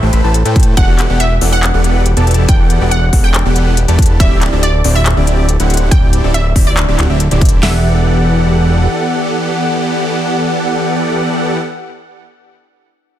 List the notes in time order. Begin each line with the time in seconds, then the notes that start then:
Already playing: G4 A4 C5 E5 A5
0.03 A1 A3 E4 A4 B4 C5 G5
0.13 A1 A3 E4 A4 B4 C5 B5, closed hi-hat
0.24 A1 A3 G4 A4 B4 C5 A5
0.34 A4, closed hi-hat
0.45 A2 A3 E4 A4 B4 C5 G5, closed hi-hat
0.56 E5, kick, closed hi-hat
0.60 closed hi-hat
0.63 closed hi-hat
0.67 A4
0.77 E1 E3 B3 D4 G4 A4 D5 F#5, kick, closed hi-hat
0.88 F#4
0.99 E4, clap, closed hi-hat
1.10 E1 E3 B3 G4 A4 D5 F#5
1.20 D5 E5, closed hi-hat
1.31 G4
1.41 E1 E3 B3 G4 A4 D5 F#5, open hi-hat
1.53 E4 F#5
1.63 D4, clap, closed hi-hat
1.74 E1 E3 B3 D4 G4 A4 D5 F#5
1.84 E4, closed hi-hat
1.95 B4
2.06 G4, closed hi-hat
2.17 E1 E3 B3 G4 A4 D5 A5, closed hi-hat
2.27 A4, closed hi-hat
2.31 closed hi-hat
2.34 closed hi-hat
2.38 E4
2.49 E1 E3 B3 D4 G4 A4 D5 F#5 G5, kick, closed hi-hat
2.60 F#4
2.70 E4, closed hi-hat
2.81 E1 E3 B3 G4 A4 D5 F#5
2.91 D5 F#5, closed hi-hat
3.03 G4
3.13 E1 E3 B3 G4 A4 D5 F#5, kick, open hi-hat
3.24 E4 G5
3.34 D4, clap, closed hi-hat
3.45 E1 E3 B3 D4 G4 A4 D5 F#5
3.56 E4, closed hi-hat
3.67 B4
3.77 G4, closed hi-hat
3.88 E1 E3 B3 G4 A4 D5 A5, closed hi-hat
3.99 A4, kick, closed hi-hat
4.02 closed hi-hat
4.06 closed hi-hat
4.10 E4
4.20 D1 D3 C4 D4 E4 G4 D5 E5, kick, closed hi-hat
4.31 G4
4.42 E4, clap, closed hi-hat
4.53 D1 D3 C4 E4 G4 A4 D5
4.63 D5 E5, closed hi-hat
4.74 A4
4.84 D1 D3 C4 E4 G4 C5 D5, open hi-hat
4.95 E4 E5
5.06 D4, clap, closed hi-hat
5.17 D1 D3 C4 D4 E4 G4 D5
5.27 E4, closed hi-hat
5.38 D5
5.49 A4, closed hi-hat
5.60 D1 D3 C4 E4 G4 A4 F#5, closed hi-hat
5.70 C5, closed hi-hat
5.74 closed hi-hat
5.77 E4, closed hi-hat
5.91 D1 D3 C4 D4 E4 G4 D5 G5, kick, closed hi-hat
6.03 G4
6.13 E4, closed hi-hat
6.24 D1 D3 C4 E4 G4 A4 D5
6.34 E5, closed hi-hat
6.45 A4
6.56 D1 D3 C4 E4 G4 C5 D5, kick, open hi-hat
6.67 E4 D5
6.77 D4, clap, closed hi-hat
6.88 D1 D3 C4 D4 E4 G4 D5
6.99 D1 D3 C4 E4 G4 F#5, clap, closed hi-hat
7.10 D1 D3 C4 E4 G4 D5 E5
7.20 A4, closed hi-hat
7.31 D1 D3 C4 E4 G4 A4 D5, closed hi-hat
7.41 C5, kick, closed hi-hat
7.45 closed hi-hat
7.49 E4, closed hi-hat
7.63 E1 E3 B3 D4 G4 A4 D5 E5 F#5, snare, open hi-hat